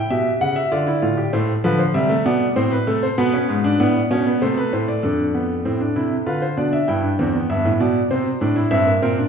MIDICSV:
0, 0, Header, 1, 2, 480
1, 0, Start_track
1, 0, Key_signature, -1, "minor"
1, 0, Tempo, 615385
1, 1035, Time_signature, 3, 2, 24, 8
1, 7242, End_track
2, 0, Start_track
2, 0, Title_t, "Grand piano"
2, 0, Program_c, 0, 0
2, 81, Note_on_c, 0, 67, 56
2, 81, Note_on_c, 0, 76, 72
2, 82, Note_on_c, 0, 47, 62
2, 229, Note_off_c, 0, 76, 0
2, 230, Note_off_c, 0, 47, 0
2, 321, Note_on_c, 0, 78, 78
2, 322, Note_on_c, 0, 49, 62
2, 436, Note_off_c, 0, 78, 0
2, 436, Note_on_c, 0, 76, 71
2, 469, Note_off_c, 0, 49, 0
2, 544, Note_off_c, 0, 67, 0
2, 553, Note_off_c, 0, 76, 0
2, 559, Note_on_c, 0, 65, 65
2, 560, Note_on_c, 0, 74, 73
2, 562, Note_on_c, 0, 50, 65
2, 674, Note_off_c, 0, 65, 0
2, 678, Note_on_c, 0, 64, 70
2, 708, Note_off_c, 0, 50, 0
2, 793, Note_off_c, 0, 64, 0
2, 797, Note_on_c, 0, 45, 62
2, 798, Note_on_c, 0, 65, 63
2, 913, Note_off_c, 0, 65, 0
2, 916, Note_on_c, 0, 67, 62
2, 945, Note_off_c, 0, 45, 0
2, 1021, Note_off_c, 0, 74, 0
2, 1031, Note_off_c, 0, 67, 0
2, 1038, Note_on_c, 0, 57, 77
2, 1039, Note_on_c, 0, 45, 66
2, 1039, Note_on_c, 0, 72, 67
2, 1185, Note_off_c, 0, 57, 0
2, 1186, Note_off_c, 0, 45, 0
2, 1186, Note_off_c, 0, 72, 0
2, 1279, Note_on_c, 0, 53, 83
2, 1280, Note_on_c, 0, 50, 72
2, 1280, Note_on_c, 0, 71, 74
2, 1393, Note_off_c, 0, 71, 0
2, 1397, Note_on_c, 0, 72, 61
2, 1426, Note_off_c, 0, 50, 0
2, 1426, Note_off_c, 0, 53, 0
2, 1512, Note_off_c, 0, 72, 0
2, 1515, Note_on_c, 0, 55, 75
2, 1516, Note_on_c, 0, 48, 71
2, 1516, Note_on_c, 0, 76, 73
2, 1631, Note_off_c, 0, 55, 0
2, 1633, Note_on_c, 0, 57, 78
2, 1664, Note_off_c, 0, 48, 0
2, 1664, Note_off_c, 0, 76, 0
2, 1750, Note_off_c, 0, 57, 0
2, 1760, Note_on_c, 0, 59, 83
2, 1761, Note_on_c, 0, 47, 71
2, 1761, Note_on_c, 0, 74, 72
2, 1907, Note_off_c, 0, 59, 0
2, 1908, Note_off_c, 0, 47, 0
2, 1908, Note_off_c, 0, 74, 0
2, 1997, Note_on_c, 0, 45, 66
2, 1997, Note_on_c, 0, 60, 85
2, 1997, Note_on_c, 0, 72, 67
2, 2112, Note_off_c, 0, 72, 0
2, 2115, Note_on_c, 0, 71, 75
2, 2145, Note_off_c, 0, 45, 0
2, 2145, Note_off_c, 0, 60, 0
2, 2232, Note_off_c, 0, 71, 0
2, 2239, Note_on_c, 0, 48, 63
2, 2240, Note_on_c, 0, 57, 77
2, 2240, Note_on_c, 0, 69, 64
2, 2354, Note_off_c, 0, 69, 0
2, 2363, Note_on_c, 0, 72, 71
2, 2387, Note_off_c, 0, 48, 0
2, 2387, Note_off_c, 0, 57, 0
2, 2476, Note_off_c, 0, 72, 0
2, 2480, Note_on_c, 0, 47, 75
2, 2480, Note_on_c, 0, 59, 94
2, 2480, Note_on_c, 0, 71, 72
2, 2595, Note_off_c, 0, 59, 0
2, 2602, Note_on_c, 0, 61, 74
2, 2628, Note_off_c, 0, 47, 0
2, 2722, Note_on_c, 0, 44, 73
2, 2750, Note_off_c, 0, 61, 0
2, 2842, Note_on_c, 0, 62, 81
2, 2870, Note_off_c, 0, 44, 0
2, 2945, Note_off_c, 0, 71, 0
2, 2956, Note_off_c, 0, 62, 0
2, 2962, Note_on_c, 0, 74, 66
2, 2963, Note_on_c, 0, 45, 64
2, 2963, Note_on_c, 0, 59, 83
2, 3110, Note_off_c, 0, 45, 0
2, 3111, Note_off_c, 0, 59, 0
2, 3202, Note_on_c, 0, 47, 69
2, 3204, Note_on_c, 0, 61, 84
2, 3318, Note_off_c, 0, 61, 0
2, 3327, Note_on_c, 0, 59, 76
2, 3351, Note_off_c, 0, 47, 0
2, 3427, Note_off_c, 0, 74, 0
2, 3440, Note_off_c, 0, 59, 0
2, 3446, Note_on_c, 0, 48, 70
2, 3446, Note_on_c, 0, 57, 79
2, 3447, Note_on_c, 0, 72, 62
2, 3560, Note_off_c, 0, 72, 0
2, 3567, Note_on_c, 0, 71, 72
2, 3594, Note_off_c, 0, 48, 0
2, 3681, Note_off_c, 0, 71, 0
2, 3688, Note_on_c, 0, 45, 62
2, 3689, Note_on_c, 0, 72, 59
2, 3802, Note_off_c, 0, 72, 0
2, 3808, Note_on_c, 0, 74, 65
2, 3836, Note_off_c, 0, 45, 0
2, 3911, Note_off_c, 0, 57, 0
2, 3922, Note_off_c, 0, 74, 0
2, 3924, Note_on_c, 0, 69, 54
2, 3926, Note_on_c, 0, 62, 64
2, 3927, Note_on_c, 0, 41, 56
2, 4074, Note_off_c, 0, 62, 0
2, 4168, Note_on_c, 0, 59, 62
2, 4315, Note_off_c, 0, 59, 0
2, 4391, Note_off_c, 0, 41, 0
2, 4409, Note_on_c, 0, 45, 57
2, 4409, Note_on_c, 0, 60, 64
2, 4522, Note_off_c, 0, 60, 0
2, 4528, Note_on_c, 0, 62, 57
2, 4556, Note_off_c, 0, 45, 0
2, 4642, Note_off_c, 0, 62, 0
2, 4648, Note_on_c, 0, 48, 61
2, 4648, Note_on_c, 0, 64, 64
2, 4796, Note_off_c, 0, 48, 0
2, 4796, Note_off_c, 0, 64, 0
2, 4856, Note_off_c, 0, 69, 0
2, 4887, Note_on_c, 0, 65, 68
2, 4887, Note_on_c, 0, 71, 57
2, 4888, Note_on_c, 0, 50, 55
2, 5003, Note_off_c, 0, 71, 0
2, 5008, Note_on_c, 0, 72, 61
2, 5035, Note_off_c, 0, 65, 0
2, 5036, Note_off_c, 0, 50, 0
2, 5123, Note_off_c, 0, 72, 0
2, 5127, Note_on_c, 0, 62, 62
2, 5128, Note_on_c, 0, 47, 54
2, 5128, Note_on_c, 0, 74, 53
2, 5243, Note_off_c, 0, 74, 0
2, 5248, Note_on_c, 0, 76, 58
2, 5275, Note_off_c, 0, 62, 0
2, 5276, Note_off_c, 0, 47, 0
2, 5363, Note_off_c, 0, 76, 0
2, 5365, Note_on_c, 0, 79, 64
2, 5366, Note_on_c, 0, 64, 64
2, 5368, Note_on_c, 0, 43, 68
2, 5482, Note_off_c, 0, 64, 0
2, 5487, Note_on_c, 0, 62, 51
2, 5516, Note_off_c, 0, 43, 0
2, 5603, Note_off_c, 0, 62, 0
2, 5609, Note_on_c, 0, 40, 73
2, 5609, Note_on_c, 0, 60, 68
2, 5724, Note_off_c, 0, 60, 0
2, 5730, Note_on_c, 0, 59, 56
2, 5757, Note_off_c, 0, 40, 0
2, 5831, Note_off_c, 0, 79, 0
2, 5848, Note_on_c, 0, 43, 66
2, 5848, Note_on_c, 0, 76, 65
2, 5963, Note_off_c, 0, 43, 0
2, 5969, Note_on_c, 0, 45, 71
2, 5996, Note_off_c, 0, 76, 0
2, 6083, Note_off_c, 0, 45, 0
2, 6086, Note_on_c, 0, 47, 73
2, 6088, Note_on_c, 0, 74, 68
2, 6234, Note_off_c, 0, 47, 0
2, 6235, Note_off_c, 0, 74, 0
2, 6308, Note_off_c, 0, 59, 0
2, 6322, Note_on_c, 0, 48, 74
2, 6323, Note_on_c, 0, 60, 64
2, 6323, Note_on_c, 0, 72, 66
2, 6470, Note_off_c, 0, 48, 0
2, 6471, Note_off_c, 0, 60, 0
2, 6560, Note_on_c, 0, 62, 68
2, 6562, Note_on_c, 0, 45, 70
2, 6676, Note_off_c, 0, 62, 0
2, 6676, Note_on_c, 0, 64, 72
2, 6709, Note_off_c, 0, 45, 0
2, 6785, Note_off_c, 0, 72, 0
2, 6793, Note_on_c, 0, 60, 71
2, 6793, Note_on_c, 0, 76, 87
2, 6794, Note_off_c, 0, 64, 0
2, 6794, Note_on_c, 0, 43, 73
2, 6912, Note_off_c, 0, 60, 0
2, 6919, Note_on_c, 0, 58, 63
2, 6944, Note_off_c, 0, 43, 0
2, 6944, Note_off_c, 0, 76, 0
2, 7035, Note_off_c, 0, 58, 0
2, 7038, Note_on_c, 0, 60, 76
2, 7039, Note_on_c, 0, 70, 85
2, 7040, Note_on_c, 0, 46, 74
2, 7155, Note_off_c, 0, 60, 0
2, 7162, Note_on_c, 0, 62, 62
2, 7189, Note_off_c, 0, 46, 0
2, 7189, Note_off_c, 0, 70, 0
2, 7242, Note_off_c, 0, 62, 0
2, 7242, End_track
0, 0, End_of_file